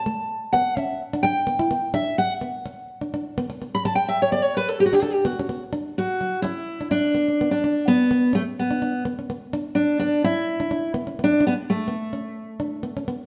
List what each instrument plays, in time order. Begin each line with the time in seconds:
Already playing: steel-string acoustic guitar A5
0.06 nylon-string guitar A3
0.53 nylon-string guitar B3, steel-string acoustic guitar F#5
0.77 nylon-string guitar C#4, steel-string acoustic guitar E5
1.13 nylon-string guitar D4
1.23 nylon-string guitar D4, steel-string acoustic guitar G5
1.47 nylon-string guitar B3
1.59 nylon-string guitar E4
1.71 nylon-string guitar B3
1.94 nylon-string guitar D4, steel-string acoustic guitar E5
2.18 steel-string acoustic guitar F#5
2.41 nylon-string guitar B3
2.66 muted nylon-string guitar stroke
3.01 nylon-string guitar D4
3.14 nylon-string guitar D4
3.38 nylon-string guitar B3
3.50 muted nylon-string guitar stroke
3.62 nylon-string guitar B3
3.75 steel-string acoustic guitar B5
3.85 steel-string acoustic guitar A5, muted nylon-string guitar stroke
3.95 steel-string acoustic guitar G5
4.08 steel-string acoustic guitar E5
4.22 steel-string acoustic guitar C#5
4.32 nylon-string guitar B3, steel-string acoustic guitar D5
4.43 steel-string acoustic guitar C#5
4.57 steel-string acoustic guitar B4
4.69 steel-string acoustic guitar A4
4.80 steel-string acoustic guitar G4
4.86 steel-string acoustic guitar F#4
4.93 nylon-string guitar D4, steel-string acoustic guitar G4
5.02 nylon-string guitar D4, steel-string acoustic guitar A4
5.13 steel-string acoustic guitar G4
5.25 nylon-string guitar B3, steel-string acoustic guitar F#4
5.39 nylon-string guitar C#4
5.49 nylon-string guitar B3
5.73 nylon-string guitar D4
5.98 steel-string acoustic guitar F#4
6.21 nylon-string guitar F#3
6.42 nylon-string guitar C#4, steel-string acoustic guitar E4
6.81 nylon-string guitar D4
6.91 nylon-string guitar D4, steel-string acoustic guitar D4
7.15 nylon-string guitar B3
7.28 nylon-string guitar C#4
7.41 nylon-string guitar B3
7.51 steel-string acoustic guitar D4
7.64 nylon-string guitar D4
7.88 steel-string acoustic guitar B3
8.11 nylon-string guitar B3
8.33 steel-string acoustic guitar A3, nylon-string guitar C#4
8.59 steel-string acoustic guitar B3
8.71 nylon-string guitar D4
8.82 nylon-string guitar D4
9.05 nylon-string guitar B3
9.19 nylon-string guitar C#4
9.30 nylon-string guitar B3
9.53 nylon-string guitar D4
9.75 steel-string acoustic guitar D4
9.99 nylon-string guitar B3, steel-string acoustic guitar D4
10.24 nylon-string guitar C#4, steel-string acoustic guitar E4
10.60 nylon-string guitar D4
10.71 nylon-string guitar D4
10.94 nylon-string guitar B3
11.07 nylon-string guitar C#4
11.19 nylon-string guitar B3
11.24 steel-string acoustic guitar D4
11.41 nylon-string guitar D4
11.47 steel-string acoustic guitar B3
11.70 steel-string acoustic guitar A3
11.88 nylon-string guitar B3
12.13 nylon-string guitar C#4
12.60 nylon-string guitar D4
12.83 nylon-string guitar B3
12.97 nylon-string guitar C#4
13.08 nylon-string guitar B3